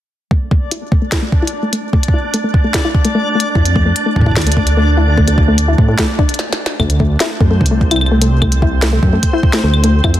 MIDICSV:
0, 0, Header, 1, 5, 480
1, 0, Start_track
1, 0, Tempo, 405405
1, 368, Time_signature, 4, 2, 24, 8
1, 12076, End_track
2, 0, Start_track
2, 0, Title_t, "Synth texture"
2, 0, Program_c, 0, 99
2, 367, Note_on_c, 0, 62, 83
2, 368, Note_on_c, 0, 74, 83
2, 7567, Note_off_c, 0, 62, 0
2, 7568, Note_off_c, 0, 74, 0
2, 8051, Note_on_c, 0, 60, 82
2, 8053, Note_on_c, 0, 72, 84
2, 12076, Note_off_c, 0, 60, 0
2, 12076, Note_off_c, 0, 72, 0
2, 12076, End_track
3, 0, Start_track
3, 0, Title_t, "Synth arpeggio sound"
3, 0, Program_c, 1, 84
3, 366, Note_on_c, 1, 57, 80
3, 433, Note_off_c, 1, 57, 0
3, 606, Note_on_c, 1, 57, 75
3, 706, Note_off_c, 1, 57, 0
3, 848, Note_on_c, 1, 64, 79
3, 914, Note_off_c, 1, 64, 0
3, 1087, Note_on_c, 1, 57, 74
3, 1186, Note_off_c, 1, 57, 0
3, 1207, Note_on_c, 1, 57, 74
3, 1273, Note_off_c, 1, 57, 0
3, 1447, Note_on_c, 1, 57, 74
3, 1546, Note_off_c, 1, 57, 0
3, 1687, Note_on_c, 1, 64, 74
3, 1753, Note_off_c, 1, 64, 0
3, 1927, Note_on_c, 1, 57, 75
3, 2026, Note_off_c, 1, 57, 0
3, 2048, Note_on_c, 1, 57, 75
3, 2114, Note_off_c, 1, 57, 0
3, 2288, Note_on_c, 1, 57, 80
3, 2387, Note_off_c, 1, 57, 0
3, 2529, Note_on_c, 1, 64, 74
3, 2595, Note_off_c, 1, 64, 0
3, 2770, Note_on_c, 1, 57, 84
3, 2868, Note_off_c, 1, 57, 0
3, 2890, Note_on_c, 1, 57, 75
3, 2955, Note_off_c, 1, 57, 0
3, 3129, Note_on_c, 1, 57, 73
3, 3228, Note_off_c, 1, 57, 0
3, 3370, Note_on_c, 1, 64, 76
3, 3435, Note_off_c, 1, 64, 0
3, 3610, Note_on_c, 1, 57, 76
3, 3708, Note_off_c, 1, 57, 0
3, 3728, Note_on_c, 1, 57, 83
3, 3794, Note_off_c, 1, 57, 0
3, 3969, Note_on_c, 1, 57, 72
3, 4067, Note_off_c, 1, 57, 0
3, 4208, Note_on_c, 1, 64, 81
3, 4274, Note_off_c, 1, 64, 0
3, 4449, Note_on_c, 1, 57, 75
3, 4547, Note_off_c, 1, 57, 0
3, 4568, Note_on_c, 1, 57, 77
3, 4634, Note_off_c, 1, 57, 0
3, 4808, Note_on_c, 1, 57, 74
3, 4907, Note_off_c, 1, 57, 0
3, 5048, Note_on_c, 1, 64, 73
3, 5114, Note_off_c, 1, 64, 0
3, 5288, Note_on_c, 1, 57, 74
3, 5387, Note_off_c, 1, 57, 0
3, 5409, Note_on_c, 1, 57, 78
3, 5475, Note_off_c, 1, 57, 0
3, 5650, Note_on_c, 1, 57, 80
3, 5748, Note_off_c, 1, 57, 0
3, 5889, Note_on_c, 1, 64, 73
3, 5954, Note_off_c, 1, 64, 0
3, 6128, Note_on_c, 1, 57, 80
3, 6227, Note_off_c, 1, 57, 0
3, 6249, Note_on_c, 1, 57, 73
3, 6314, Note_off_c, 1, 57, 0
3, 6489, Note_on_c, 1, 57, 77
3, 6588, Note_off_c, 1, 57, 0
3, 6728, Note_on_c, 1, 64, 74
3, 6794, Note_off_c, 1, 64, 0
3, 6968, Note_on_c, 1, 57, 75
3, 7067, Note_off_c, 1, 57, 0
3, 7086, Note_on_c, 1, 57, 84
3, 7153, Note_off_c, 1, 57, 0
3, 7326, Note_on_c, 1, 62, 76
3, 7367, Note_off_c, 1, 62, 0
3, 8046, Note_on_c, 1, 57, 83
3, 8113, Note_off_c, 1, 57, 0
3, 8288, Note_on_c, 1, 57, 76
3, 8387, Note_off_c, 1, 57, 0
3, 8528, Note_on_c, 1, 64, 84
3, 8594, Note_off_c, 1, 64, 0
3, 8769, Note_on_c, 1, 57, 76
3, 8867, Note_off_c, 1, 57, 0
3, 8888, Note_on_c, 1, 57, 76
3, 8954, Note_off_c, 1, 57, 0
3, 9128, Note_on_c, 1, 57, 74
3, 9227, Note_off_c, 1, 57, 0
3, 9369, Note_on_c, 1, 64, 76
3, 9434, Note_off_c, 1, 64, 0
3, 9608, Note_on_c, 1, 57, 76
3, 9707, Note_off_c, 1, 57, 0
3, 9729, Note_on_c, 1, 57, 74
3, 9795, Note_off_c, 1, 57, 0
3, 9969, Note_on_c, 1, 57, 83
3, 10068, Note_off_c, 1, 57, 0
3, 10208, Note_on_c, 1, 64, 73
3, 10274, Note_off_c, 1, 64, 0
3, 10449, Note_on_c, 1, 57, 83
3, 10547, Note_off_c, 1, 57, 0
3, 10570, Note_on_c, 1, 57, 76
3, 10635, Note_off_c, 1, 57, 0
3, 10810, Note_on_c, 1, 57, 74
3, 10908, Note_off_c, 1, 57, 0
3, 11050, Note_on_c, 1, 64, 78
3, 11115, Note_off_c, 1, 64, 0
3, 11288, Note_on_c, 1, 57, 79
3, 11387, Note_off_c, 1, 57, 0
3, 11409, Note_on_c, 1, 57, 82
3, 11474, Note_off_c, 1, 57, 0
3, 11649, Note_on_c, 1, 57, 74
3, 11747, Note_off_c, 1, 57, 0
3, 11889, Note_on_c, 1, 64, 80
3, 11954, Note_off_c, 1, 64, 0
3, 12076, End_track
4, 0, Start_track
4, 0, Title_t, "Detuned saw bass"
4, 0, Program_c, 2, 39
4, 4207, Note_on_c, 2, 41, 95
4, 4650, Note_off_c, 2, 41, 0
4, 4927, Note_on_c, 2, 45, 90
4, 5167, Note_on_c, 2, 38, 99
4, 5185, Note_off_c, 2, 45, 0
4, 6810, Note_off_c, 2, 38, 0
4, 6847, Note_on_c, 2, 45, 90
4, 7041, Note_off_c, 2, 45, 0
4, 8047, Note_on_c, 2, 38, 98
4, 8490, Note_off_c, 2, 38, 0
4, 8768, Note_on_c, 2, 42, 89
4, 9008, Note_on_c, 2, 36, 100
4, 9025, Note_off_c, 2, 42, 0
4, 10651, Note_off_c, 2, 36, 0
4, 10688, Note_on_c, 2, 42, 92
4, 10881, Note_off_c, 2, 42, 0
4, 11407, Note_on_c, 2, 38, 88
4, 11850, Note_off_c, 2, 38, 0
4, 11889, Note_on_c, 2, 41, 97
4, 12076, Note_off_c, 2, 41, 0
4, 12076, End_track
5, 0, Start_track
5, 0, Title_t, "Drums"
5, 367, Note_on_c, 9, 36, 100
5, 485, Note_off_c, 9, 36, 0
5, 607, Note_on_c, 9, 36, 101
5, 725, Note_off_c, 9, 36, 0
5, 846, Note_on_c, 9, 42, 80
5, 964, Note_off_c, 9, 42, 0
5, 1087, Note_on_c, 9, 36, 119
5, 1205, Note_off_c, 9, 36, 0
5, 1326, Note_on_c, 9, 40, 116
5, 1326, Note_on_c, 9, 42, 93
5, 1327, Note_on_c, 9, 36, 101
5, 1444, Note_off_c, 9, 40, 0
5, 1444, Note_off_c, 9, 42, 0
5, 1445, Note_off_c, 9, 36, 0
5, 1567, Note_on_c, 9, 36, 116
5, 1685, Note_off_c, 9, 36, 0
5, 1746, Note_on_c, 9, 42, 51
5, 1864, Note_off_c, 9, 42, 0
5, 2046, Note_on_c, 9, 42, 79
5, 2164, Note_off_c, 9, 42, 0
5, 2287, Note_on_c, 9, 36, 107
5, 2405, Note_off_c, 9, 36, 0
5, 2406, Note_on_c, 9, 42, 53
5, 2467, Note_on_c, 9, 36, 101
5, 2525, Note_off_c, 9, 42, 0
5, 2585, Note_off_c, 9, 36, 0
5, 2767, Note_on_c, 9, 42, 83
5, 2885, Note_off_c, 9, 42, 0
5, 3007, Note_on_c, 9, 36, 117
5, 3126, Note_off_c, 9, 36, 0
5, 3246, Note_on_c, 9, 40, 120
5, 3246, Note_on_c, 9, 42, 97
5, 3247, Note_on_c, 9, 36, 108
5, 3365, Note_off_c, 9, 36, 0
5, 3365, Note_off_c, 9, 40, 0
5, 3365, Note_off_c, 9, 42, 0
5, 3487, Note_on_c, 9, 36, 119
5, 3605, Note_off_c, 9, 36, 0
5, 3606, Note_on_c, 9, 42, 52
5, 3725, Note_off_c, 9, 42, 0
5, 4026, Note_on_c, 9, 42, 81
5, 4145, Note_off_c, 9, 42, 0
5, 4207, Note_on_c, 9, 36, 110
5, 4326, Note_off_c, 9, 36, 0
5, 4327, Note_on_c, 9, 42, 54
5, 4446, Note_off_c, 9, 42, 0
5, 4448, Note_on_c, 9, 36, 110
5, 4566, Note_off_c, 9, 36, 0
5, 4687, Note_on_c, 9, 42, 77
5, 4805, Note_off_c, 9, 42, 0
5, 4927, Note_on_c, 9, 36, 113
5, 4987, Note_off_c, 9, 36, 0
5, 4987, Note_on_c, 9, 36, 94
5, 5048, Note_off_c, 9, 36, 0
5, 5048, Note_on_c, 9, 36, 77
5, 5108, Note_off_c, 9, 36, 0
5, 5108, Note_on_c, 9, 36, 62
5, 5167, Note_off_c, 9, 36, 0
5, 5167, Note_on_c, 9, 36, 107
5, 5168, Note_on_c, 9, 40, 122
5, 5168, Note_on_c, 9, 42, 42
5, 5228, Note_off_c, 9, 42, 0
5, 5228, Note_on_c, 9, 42, 55
5, 5286, Note_off_c, 9, 36, 0
5, 5286, Note_off_c, 9, 40, 0
5, 5288, Note_off_c, 9, 42, 0
5, 5288, Note_on_c, 9, 42, 66
5, 5347, Note_off_c, 9, 42, 0
5, 5347, Note_on_c, 9, 42, 77
5, 5407, Note_on_c, 9, 36, 122
5, 5466, Note_off_c, 9, 42, 0
5, 5526, Note_off_c, 9, 36, 0
5, 5527, Note_on_c, 9, 42, 53
5, 5645, Note_off_c, 9, 42, 0
5, 6128, Note_on_c, 9, 36, 111
5, 6246, Note_off_c, 9, 36, 0
5, 6246, Note_on_c, 9, 42, 51
5, 6365, Note_off_c, 9, 42, 0
5, 6368, Note_on_c, 9, 36, 106
5, 6486, Note_off_c, 9, 36, 0
5, 6607, Note_on_c, 9, 42, 78
5, 6725, Note_off_c, 9, 42, 0
5, 6847, Note_on_c, 9, 36, 123
5, 6966, Note_off_c, 9, 36, 0
5, 7087, Note_on_c, 9, 36, 109
5, 7087, Note_on_c, 9, 40, 124
5, 7087, Note_on_c, 9, 42, 91
5, 7205, Note_off_c, 9, 40, 0
5, 7205, Note_off_c, 9, 42, 0
5, 7206, Note_off_c, 9, 36, 0
5, 7327, Note_on_c, 9, 36, 120
5, 7445, Note_off_c, 9, 36, 0
5, 7447, Note_on_c, 9, 42, 48
5, 7507, Note_off_c, 9, 42, 0
5, 7507, Note_on_c, 9, 42, 38
5, 7566, Note_on_c, 9, 38, 70
5, 7625, Note_off_c, 9, 42, 0
5, 7684, Note_off_c, 9, 38, 0
5, 7726, Note_on_c, 9, 38, 80
5, 7845, Note_off_c, 9, 38, 0
5, 7887, Note_on_c, 9, 38, 92
5, 8005, Note_off_c, 9, 38, 0
5, 8047, Note_on_c, 9, 36, 106
5, 8047, Note_on_c, 9, 75, 81
5, 8166, Note_off_c, 9, 36, 0
5, 8166, Note_off_c, 9, 75, 0
5, 8167, Note_on_c, 9, 42, 54
5, 8286, Note_off_c, 9, 42, 0
5, 8287, Note_on_c, 9, 36, 101
5, 8406, Note_off_c, 9, 36, 0
5, 8528, Note_on_c, 9, 40, 115
5, 8528, Note_on_c, 9, 42, 82
5, 8646, Note_off_c, 9, 40, 0
5, 8646, Note_off_c, 9, 42, 0
5, 8767, Note_on_c, 9, 36, 118
5, 8886, Note_off_c, 9, 36, 0
5, 9008, Note_on_c, 9, 36, 104
5, 9067, Note_on_c, 9, 42, 97
5, 9126, Note_off_c, 9, 36, 0
5, 9186, Note_off_c, 9, 42, 0
5, 9247, Note_on_c, 9, 36, 119
5, 9366, Note_off_c, 9, 36, 0
5, 9368, Note_on_c, 9, 42, 55
5, 9368, Note_on_c, 9, 75, 77
5, 9427, Note_off_c, 9, 75, 0
5, 9427, Note_on_c, 9, 75, 61
5, 9486, Note_off_c, 9, 42, 0
5, 9488, Note_off_c, 9, 75, 0
5, 9488, Note_on_c, 9, 75, 54
5, 9548, Note_off_c, 9, 75, 0
5, 9548, Note_on_c, 9, 75, 42
5, 9666, Note_off_c, 9, 75, 0
5, 9727, Note_on_c, 9, 42, 82
5, 9845, Note_off_c, 9, 42, 0
5, 9967, Note_on_c, 9, 75, 79
5, 9968, Note_on_c, 9, 36, 108
5, 10085, Note_off_c, 9, 75, 0
5, 10086, Note_off_c, 9, 36, 0
5, 10087, Note_on_c, 9, 42, 55
5, 10205, Note_off_c, 9, 42, 0
5, 10208, Note_on_c, 9, 36, 105
5, 10326, Note_off_c, 9, 36, 0
5, 10446, Note_on_c, 9, 40, 123
5, 10446, Note_on_c, 9, 42, 82
5, 10565, Note_off_c, 9, 40, 0
5, 10565, Note_off_c, 9, 42, 0
5, 10688, Note_on_c, 9, 36, 127
5, 10806, Note_off_c, 9, 36, 0
5, 10927, Note_on_c, 9, 42, 99
5, 10928, Note_on_c, 9, 36, 112
5, 11045, Note_off_c, 9, 42, 0
5, 11046, Note_off_c, 9, 36, 0
5, 11168, Note_on_c, 9, 36, 121
5, 11286, Note_off_c, 9, 36, 0
5, 11288, Note_on_c, 9, 40, 121
5, 11288, Note_on_c, 9, 42, 55
5, 11406, Note_off_c, 9, 40, 0
5, 11406, Note_off_c, 9, 42, 0
5, 11528, Note_on_c, 9, 75, 52
5, 11646, Note_off_c, 9, 75, 0
5, 11646, Note_on_c, 9, 42, 82
5, 11765, Note_off_c, 9, 42, 0
5, 11886, Note_on_c, 9, 75, 79
5, 11888, Note_on_c, 9, 36, 111
5, 12005, Note_off_c, 9, 75, 0
5, 12006, Note_off_c, 9, 36, 0
5, 12006, Note_on_c, 9, 42, 55
5, 12076, Note_off_c, 9, 42, 0
5, 12076, End_track
0, 0, End_of_file